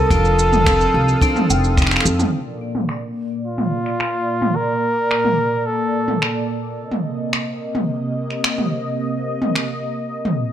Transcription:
Already playing: C3 G3 A#3 D#4 G4 A4 D#6
0.11 F1 F3 D4 A4 F5, kick, shaker
0.25 shaker
0.39 shaker
0.53 mid tom, shaker
0.66 C4 D#4 A4, finger snap, kick, shaker
0.81 shaker
0.94 C2
1.08 shaker
1.21 C4 D4, kick, shaker
1.36 mid tom, shaker
1.50 F1 G5, shaker
1.64 shaker
1.77 finger snap, kick, shaker
1.82 finger snap
1.87 finger snap
1.91 finger snap, shaker
1.96 finger snap
2.00 finger snap
2.05 F2, shaker
2.19 mid tom, shaker
2.33 A#2 A#3 D5
2.75 mid tom
2.89 finger snap
3.45 F4
3.58 mid tom
3.86 finger snap
4.00 finger snap
4.42 mid tom
4.56 A#4
5.11 finger snap
5.25 mid tom
5.66 A4
6.08 mid tom
6.22 finger snap
6.78 C3 A#3 D#5
6.91 mid tom
7.33 finger snap
7.75 mid tom
8.30 finger snap
8.44 finger snap
8.58 mid tom
9.42 mid tom
9.56 finger snap
10.25 mid tom

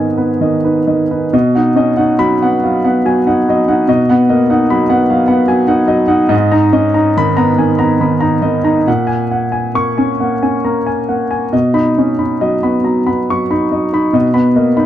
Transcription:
Already playing: G#2 D#3 B3 C#4 D#4 B4 D#5 F#5 G#5
0.17 B3 B4
0.41 D#3 D#5
0.64 D#4 B4
0.87 D#3 D#5
1.11 D#4 B4
1.33 B2 D#5
1.55 D#4 F#5
1.76 C#4 D#5
1.97 D#4 F#5
2.19 F#3 B5
2.42 B3 F#5
2.64 F#3 F5
2.84 B3 F#5
3.05 F#3 G#5
3.27 D#4 F#5
3.49 F#3 D#5
3.68 D#4 F#5
3.88 B2 D#5
4.09 B3 F#5
4.29 A#3 D#5
4.50 D#4 F#5
4.70 F#3 B5
4.89 B3 F#5
5.10 F#3 F5
5.28 B3 F#5
5.48 F#3 G#5
5.67 D#4 F#5
5.87 F#3 D#5
6.08 D#4 F#5
6.29 G#2 D#5
6.52 D#4 A#5
6.73 C#4 D#5
6.94 D#4 A#5
7.17 D#3 B5
7.37 B3 A#5
7.58 D#3 G#5
7.79 B3 A#5
8.00 D#3 B5
8.21 D#4 A#5
8.42 D#3 D#5
8.64 D#4 A#5
8.87 A#2 F#5
9.07 G#5
9.31 F#5
9.52 G#5
9.75 A#3 C#6
9.98 C#4 G#5
10.20 A#3 F#5
10.43 C#4 G#5
10.65 A#3 A#5
10.86 G#5
11.09 A#3 F#5
11.31 G#5
11.53 B2 D#5
11.74 D#4 B5
11.98 C#4 D#5
12.19 D#4 B5
12.41 F#3 D#5
12.63 B3 B5
12.84 F#3 A#5
13.06 B3 B5
13.30 F#3 C#6
13.51 D#4 B5
13.72 F#3 D#5
13.93 D#4 B5
14.13 B2 D#5
14.34 B3 B5
14.55 A#3 D#5
14.77 D#4 B5

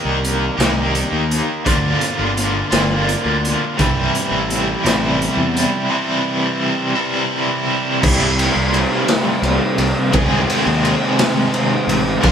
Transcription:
Already playing: D#3 A#3 D#4 G4
0.05 C2
0.24 closed hi-hat
0.58 C2 D#3 A#3 D#4 G4, snare, closed hi-hat
0.95 closed hi-hat
1.12 D#2
1.31 closed hi-hat
1.65 D2 D3 A#3 D4 F4, kick, closed hi-hat
2.01 closed hi-hat
2.19 G1
2.37 closed hi-hat
2.70 G1 D3 A#3 D4 F4, snare, closed hi-hat
3.09 closed hi-hat
3.25 D2
3.45 closed hi-hat
3.77 C2 C3 E3 G3 C4 E4, kick, closed hi-hat
4.15 closed hi-hat
4.32 A1
4.50 closed hi-hat
4.84 A1 C3 E3 G3 C4 E4, snare, closed hi-hat
5.22 closed hi-hat
5.37 E2
5.57 closed hi-hat
5.89 C3 E3 G3 C4 E4
6.95 C3 E3 G3 C4 E4
8.02 C2 C3 G3 A#3 E4 G4, kick, crash
8.21 C2
8.39 ride
8.56 C2
8.74 ride
9.08 snare, ride
9.43 C2, ride
9.78 C2, ride
10.12 C2 C3 D#3 G#3 C4 G#4, kick, ride
10.31 C2
10.50 ride
10.67 D#2
10.85 ride
11.19 snare, ride
11.54 ride
11.88 A1, ride
12.21 A#1 A#2 D3 A#3 D4 F4, kick, crash

